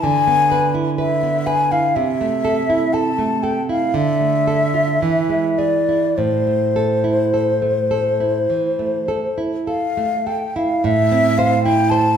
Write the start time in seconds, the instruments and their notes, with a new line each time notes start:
0.03 nylon-string guitar D3, flute G#5
0.28 nylon-string guitar B3
0.52 nylon-string guitar B4
0.74 nylon-string guitar E4
0.98 nylon-string guitar B4, flute E5
1.23 nylon-string guitar B3
1.47 nylon-string guitar B4, flute G#5
1.72 nylon-string guitar E4, flute F5
1.95 nylon-string guitar C3, flute E5
2.21 nylon-string guitar A3
2.45 nylon-string guitar A4
2.70 nylon-string guitar E4
2.93 nylon-string guitar A4, flute A5
3.18 nylon-string guitar A3
3.43 nylon-string guitar A4, flute G5
3.69 nylon-string guitar E4, flute F5
3.94 nylon-string guitar D3, flute E5
4.21 nylon-string guitar A3
4.47 nylon-string guitar A4
4.74 nylon-string guitar F4
5.02 nylon-string guitar E3
5.29 nylon-string guitar G#3
5.58 nylon-string guitar G#4, flute D5
5.89 nylon-string guitar E4
6.17 nylon-string guitar A2, flute C5
6.47 nylon-string guitar A3
6.76 nylon-string guitar A4
7.04 nylon-string guitar E4
7.34 nylon-string guitar A4
7.62 nylon-string guitar A3
7.91 nylon-string guitar A4
8.20 nylon-string guitar E4
8.50 nylon-string guitar E3
8.79 nylon-string guitar A3
9.08 nylon-string guitar A4
9.38 nylon-string guitar E4
9.66 nylon-string guitar A4, flute F5
9.97 nylon-string guitar A3
10.26 nylon-string guitar A4, flute G5
10.56 nylon-string guitar E4, flute F5
10.84 nylon-string guitar A2, flute E5
11.12 nylon-string guitar C4
11.38 nylon-string guitar C5, flute F5
11.64 nylon-string guitar E4, flute G5
11.90 nylon-string guitar C5, flute A5